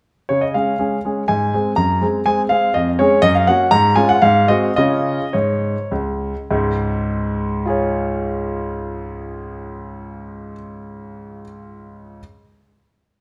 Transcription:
0.29 C#3 C#5
0.41 D#5
0.54 G#3 C#4 G#4 F5
0.79 G#3 C#4 G#4
1.05 G#3 C#4 G#4
1.28 G#2 G#5
1.54 G#3 C4 G#4
1.76 F#2 A#5
2.01 G#3 C4 G#4
2.26 G#3 C4 G#4 G#5
2.49 G#3 C4 G#4 F5
2.74 F2 D#5
2.99 G#3 C#4 G#4 C#5
3.22 F#2 D#5
3.35 F5
3.47 A#3 C#4 F#4 F#5
3.71 G#2 A#5
3.96 G#3 C#4 F4 G#5
4.09 F#5
4.22 G#2 F5
4.48 G#3 C4 F#4 D#5
4.76 C#3 C#4 F4 D#5
5.33 G#2 C#5
5.91 C#2
6.51 C#2 G#2
7.66 F4 G#4
7.70 C#5

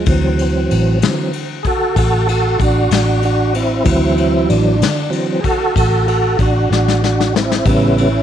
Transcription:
0.06 D2 E3 F#3 C4, kick, ride
0.39 ride
0.71 A1, ride
1.02 D3 E3 F#3 C4, snare, ride
1.33 ride
1.63 F#4 G#4, kick, ride
1.67 A4
1.96 A1 F#4 A4, kick, ride
2.28 F#4 A4, ride
2.59 A1 D4 F#4, kick, ride
2.91 A1 D4 F#4, snare, ride
3.23 D4 F#4, ride
3.54 C4 E4, ride
3.84 D2 E3 F#3 C4 E4, kick, ride
4.17 C4 E4, ride
4.49 A1 D4, ride
4.81 D3, snare, ride
5.10 E3 F#3 C4, ride
5.41 G#4, kick, ride
5.45 F#4 A4
5.76 A1 F#4 A4, kick, ride
6.08 F#4 A4, ride
6.39 A1 D4 F#4, kick, ride
6.70 A1 D4 F#4, snare
6.88 snare
7.04 D4 F#4, snare
7.21 snare
7.36 C4 E4, snare
7.52 snare
7.66 A1 C#3 G3 B3 C#4 E4, kick, ride
7.98 C#4 E4, ride

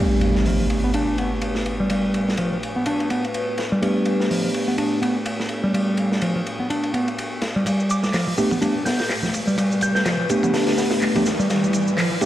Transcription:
Already playing: A3 G4
0.00 G3 B3 D4 G4 B4, impact
0.21 ride
0.35 snare
0.46 F3, open hi-hat
0.60 F3
0.70 ride
0.84 B3
0.94 D4, ride
1.18 B3, ride
1.42 ride
1.55 snare
1.66 ride
1.80 G3
1.90 G3, ride
2.14 ride
2.29 snare
2.37 F3, ride
2.52 F3
2.63 ride
2.76 B3
2.86 D4, ride
3.00 ride
3.10 B3, ride
3.25 ride
3.34 ride
3.58 snare, ride
3.72 G3
3.82 G3 A3 B3 D4 G4 A4, ride
4.05 ride
4.20 snare
4.31 F3, open hi-hat
4.44 F3
4.54 ride
4.68 B3
4.78 D4, ride
5.02 B3, ride
5.26 ride
5.40 snare
5.49 ride
5.63 G3
5.74 G3, ride
5.97 ride
6.12 snare
6.22 F3, ride
6.36 F3
6.47 ride
6.60 B3
6.70 D4, ride
6.84 ride
6.94 B3, ride
7.08 ride
7.18 ride
7.42 snare, ride
7.56 G3
7.66 G3 A3 G4 B4, kick, ride, riser, muted conga, shaker
7.80 shaker
7.90 D6, ride, shaker
8.03 D6, snare, muted conga, shaker
8.13 F3, snare, clap, open hi-hat, shaker
8.27 F3, muted conga
8.38 A3 B3 D4 G4, ride, shaker
8.51 B3, kick, low conga, shaker
8.61 A3 B3 D4 G4, kick, ride, muted conga, shaker
8.85 B3 G6, snare, open hi-hat, muted conga, shaker
8.99 snare, open hi-hat, shaker
9.09 snare, clap, open hi-hat, shaker
9.23 snare, muted conga, low conga, shaker
9.34 kick, ride, high conga, shaker
9.47 G3, muted conga, shaker
9.58 G3, kick, ride, shaker
9.72 shaker
9.81 G6, ride, muted conga, shaker
9.95 G6, snare, shaker
10.06 F3, snare, clap, ride, muted conga, shaker
10.19 F3
10.30 A3 B3 D4 G4, kick, ride, shaker
10.43 B3, kick, muted conga, low conga, shaker
10.54 D4, snare, open hi-hat, shaker
10.67 snare, open hi-hat, muted conga
10.78 B3, snare, open hi-hat, shaker
10.91 snare, open hi-hat, shaker
11.01 snare, clap, muted conga, shaker
11.15 A3 B3 D4 G4, kick, ride, low conga, shaker
11.26 snare, ride, muted conga, high conga, shaker
11.39 G3, shaker
11.50 G3, snare, ride, shaker
11.64 muted conga, shaker
11.73 ride, shaker
11.87 muted conga, shaker
11.97 F3, snare, clap, open hi-hat, shaker
12.11 F3
12.21 A3 B3 D4 G4, ride, muted conga, shaker

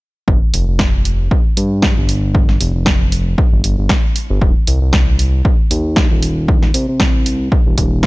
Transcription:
0.28 G1, kick
0.54 F1, open hi-hat
0.68 F1
0.79 kick, snare
1.05 open hi-hat
1.31 kick
1.57 G2, open hi-hat
1.82 kick, snare
1.97 G1
2.09 open hi-hat
2.35 kick
2.49 snare
2.60 F1, open hi-hat
2.75 F1
2.86 kick, snare
3.12 open hi-hat
3.38 kick
3.52 G1
3.64 G1, open hi-hat
3.78 G1
3.89 kick, snare
4.16 open hi-hat
4.30 G1
4.41 D#1, kick
4.67 C2, open hi-hat
4.82 C2
4.93 kick, snare
5.19 open hi-hat
5.45 kick
5.71 D#2, open hi-hat
5.96 kick, snare
6.11 D#1
6.23 open hi-hat
6.48 kick
6.63 snare
6.74 C2, open hi-hat
6.89 C2
7.00 kick, snare
7.26 open hi-hat
7.52 kick
7.66 D#1
7.78 D#1, kick, open hi-hat
8.03 snare

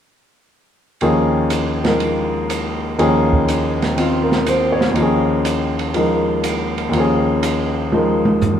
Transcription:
1.01 D#2 D#3 F3 C#4 G#4, ride
1.50 hi-hat pedal, ride
1.84 F3 G#3 D#4 A#4, snare, ride
2.00 ride
2.50 hi-hat pedal, ride
2.99 D#2 D#3 F3 C#4 G#4, ride
3.33 kick
3.48 hi-hat pedal, ride
3.82 snare, ride
3.96 D#3 C4 F4, ride
4.23 A#4
4.32 snare
4.46 C5, hi-hat pedal, ride
4.72 C#5
4.81 snare
4.91 D#2 D#3
4.96 F3, ride
5.00 C#4 G#4
5.45 hi-hat pedal, ride
5.79 ride
5.94 F3 G#3 D#4 A#4, ride
6.44 hi-hat pedal, ride
6.78 ride
6.89 D#2 D#3
6.93 F3, ride
6.98 C#4 G#4
7.43 hi-hat pedal, ride
7.92 F3 G#3 D#4 A#4, high tom
8.25 high tom
8.41 floor tom, hi-hat pedal

